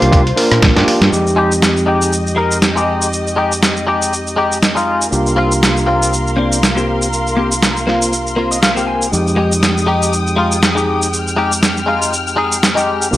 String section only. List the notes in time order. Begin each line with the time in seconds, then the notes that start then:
Already playing: A#3 F4 C5
1.11 G4 D#5
5.12 A#4 F5 C6
9.13 G#3 G5 D#6
11.13 F6
13.12 A#4 F5 C6